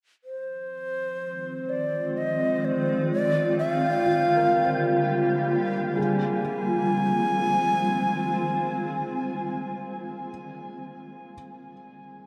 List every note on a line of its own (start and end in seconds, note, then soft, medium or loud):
0.23 3.11 D#3 medium
0.23 5.98 F3 medium
0.23 5.99 C4 medium
0.23 1.71 C5 medium
0.46 4.26 C4 medium
0.66 3.12 G#3 medium
0.75 5.97 F4 medium
1.41 3.12 G#4 medium
1.69 2.19 D5 medium
2.17 2.66 D#5 medium
2.65 3.11 C5 medium
3.09 5.96 D3 medium
3.09 3.56 D5 medium
3.09 5.99 G5 medium
3.37 5.95 G4 medium
3.49 5.98 G3 medium
3.59 3.72 E5 loud
3.72 5.46 F5 loud
3.87 5.98 A#3 medium
4.06 6.40 F4 soft
4.36 4.53 A#4 soft
4.54 6.41 A#4 soft
4.64 6.94 C5 soft
5.94 9.58 D#3 medium
5.94 10.29 G#4 medium
5.94 9.57 G#5 medium
5.99 9.70 F3 medium
5.99 9.70 C4 medium
6.08 9.57 G#3 medium
6.22 9.57 C4 medium
6.37 9.57 F4 medium
6.54 9.59 C5 medium